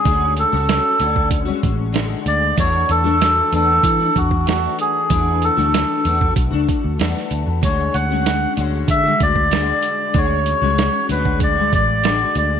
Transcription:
<<
  \new Staff \with { instrumentName = "Melodica" } { \time 4/4 \key d \lydian \tempo 4 = 95 gis'8 a'4. r4. d''8 | cis''8 a'4 a'4 fis'8 fis'8 gis'8~ | gis'8 a'4. r2 | cis''8 fis''4 r8 e''8 d''4. |
cis''4. b'8 d''8 d''4 d''8 | }
  \new Staff \with { instrumentName = "Steel-string acoustic guitar" } { \time 4/4 \key d \lydian <d gis cis' fis'>8. <cis' fis'>8. <d cis' fis'>8. <gis cis' fis'>8. <d gis fis'>4 | <e a d' fis'>8. <e a d' fis'>8. <e a d' fis'>8. <a d' fis'>8. <e a d' fis'>4 | <e a d' fis'>8. <e a d' fis'>8. <e a d' fis'>8. <a d' fis'>8. <e a d' fis'>4 | <d gis cis' fis'>8. <d gis cis' fis'>8. <d gis cis' fis'>8. <gis fis'>8. <d gis fis'>4 |
<d gis cis' fis'>8. <gis cis' fis'>8. <d gis cis' fis'>8. <gis fis'>8. <d gis fis'>4 | }
  \new Staff \with { instrumentName = "Picked electric bass" } { \clef bass \time 4/4 \key d \lydian d,8. cis,8 r16 d,4 a,,4 d,8 | e,8 e,4 e,8 e8 e,4 r8 | e,8. d,8 r16 e,8 b,,16 cis,16 r16 d,16 e,16 r16 d,16 e,16 | d,8 d,4 d,8 d8 d,4 r8 |
d,8. cis,8 r16 d,4 a,,4 d,8 | }
  \new DrumStaff \with { instrumentName = "Drums" } \drummode { \time 4/4 <hh bd>8 hh8 <hh sn>8 hh16 bd16 <hh bd>8 <hh bd>8 <hh sn>8 hh8 | <hh bd>8 hh8 <hh sn>8 hh8 <hh bd>8 <hh bd>16 bd16 <hh sn>8 hh8 | <hh bd>8 hh8 <hh sn>8 hh16 bd16 <hh bd>8 <hh bd>8 <hh sn>16 sn16 hh8 | <hh bd>8 hh8 <hh sn>8 hh8 <hh bd>8 <hh bd>16 bd16 <hh sn>8 hh8 |
<hh bd>8 hh8 <hh sn>8 hh16 bd16 <hh bd>8 <hh bd>8 <hh sn>8 hh8 | }
>>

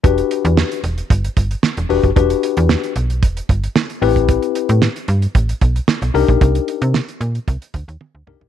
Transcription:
<<
  \new Staff \with { instrumentName = "Tine electric piano" } { \time 4/4 \key e \minor \tempo 4 = 113 <d' fis' g' b'>4. r2 <d' fis' g' b'>8 | <d' fis' g' b'>4. r2 <c' e' g' b'>8~ | <c' e' g' b'>4 r2 r8 <d' ees' g' bes'>8~ | <d' ees' g' bes'>4 r2 r8 <d' ees' g' bes'>8 | }
  \new Staff \with { instrumentName = "FM bass" } { \clef bass \time 4/4 \key e \minor e,,8 r16 e,8 r16 e,,8 g,,8 g,,8 r16 e,,16 e,,16 fis,,16 | e,,8 r16 e,8 r16 b,,8 e,,8 g,,8 r8 a,,8~ | a,,8 r16 a,8 r16 g,8 a,,8 b,,8 r16 b,,16 c,16 bes,,16 | c,8 r16 c8 r16 bes,8 c,16 r16 d,16 ees,16 r16 d,16 c,16 bes,,16 | }
  \new DrumStaff \with { instrumentName = "Drums" } \drummode { \time 4/4 <hh bd>16 hh16 hh16 hh16 sn16 hh16 hh16 hh16 <hh bd>16 hh16 <hh bd>16 hh16 sn16 hh16 hho16 <hh bd>16 | <hh bd>16 hh16 hh16 hh16 sn16 hh16 hh16 hh16 <hh bd>16 hh16 <hh bd>16 hh16 sn16 hh16 hho16 <hh bd>16 | <hh bd>16 hh16 hh16 hh16 sn16 hh16 hh16 hh16 <hh bd>16 hh16 <hh bd>16 hh16 sn16 hh16 hho16 <hh bd>16 | <hh bd>16 hh16 hh16 hh16 sn16 hh16 hh16 hh16 <hh bd>16 hh16 <hh bd>16 hh16 tommh8 toml16 tomfh16 | }
>>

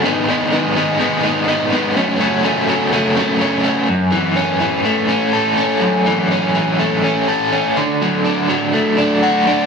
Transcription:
\new Staff \with { instrumentName = "Overdriven electric guitar" } { \clef bass \time 4/4 \key fis \minor \tempo 4 = 124 <gis, dis gis b dis'>8 <gis, dis gis b dis'>8 <gis, dis gis b dis'>8 <gis, dis gis b dis'>8 <gis, dis gis b dis'>8 <gis, dis gis b dis'>8 <gis, dis gis b dis'>8 <gis, dis gis b dis'>8 | <fis, cis fis a cis'>8 <fis, cis fis a cis'>8 <fis, cis fis a cis'>8 <fis, cis fis a cis'>8 <fis, cis fis a cis'>8 <fis, cis fis a cis'>8 <fis, cis fis a cis'>8 <fis, cis fis a cis'>8 | fis,8 e8 cis'8 e8 a8 cis'8 a'8 cis'8 | fis,8 e8 cis'8 e8 a8 cis'8 a'8 cis'8 |
d8 fis8 d'8 fis8 a8 d'8 fis'8 d'8 | }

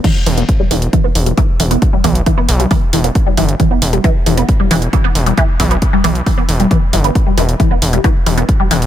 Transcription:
<<
  \new Staff \with { instrumentName = "Synth arpeggio sound" } { \clef bass \time 4/4 \key e \minor \tempo 4 = 135 e16 r16 e16 b16 r16 g16 e16 r16 e16 b16 r16 g16 e16 r16 e16 b16 | r16 g16 e16 r16 e16 b16 r16 g16 e16 r16 e16 b16 r16 g16 e16 r16 | e16 b16 r16 g16 e16 r16 e16 b16 r16 g16 e16 r16 e16 b16 r16 g16 | e16 r16 e16 b16 r16 g16 e16 r16 e16 b16 r16 g16 e16 r16 e16 b16 |
r16 g16 e16 r16 e16 b16 r16 g16 e16 r16 e16 b16 r16 g16 e16 r16 | }
  \new Staff \with { instrumentName = "Analog synth bass" } { \clef bass \time 4/4 \key e \minor r8 e,,8 r8 e,,8 r8 e,,8 r8 e,,8 | r8 b,,8 r8 b,,8 r8 e,,8 r8 g,,8 | r8 e,,8 r8 e,,8 r8 e,,8 r8 e,,8 | r8 b,,8 r8 b,,8 r8 e,,8 r8 g,,8 |
r8 e,,8 r8 e,,8 r8 e,,8 r8 e,,8 | }
  \new DrumStaff \with { instrumentName = "Drums" } \drummode { \time 4/4 <cymc hh bd>8 hho16 hh16 <hh bd>8 hho16 hh16 <hh bd>8 hho16 hh16 <hh bd>8 hho16 hh16 | <hh bd>8 <hho bd>16 hh16 <hh bd>8 hho16 hh16 <hho bd>8 hho16 hh16 <hh bd>8 hho16 hh16 | <hh bd>8 hho16 hh16 <hh bd>8 hho16 hh16 <hh bd>8 hho16 hh16 <hh bd>8 hho16 hh16 | <hh bd>8 <hho bd>16 hh16 <hh bd>8 hho16 hh16 <hho bd>8 hho16 hh16 <hh bd>8 hho16 hh16 |
<hh bd>8 hho16 hh16 <hh bd>8 hho16 hh16 <hh bd>8 hho16 hh16 <hh bd>8 hho16 hh16 | }
>>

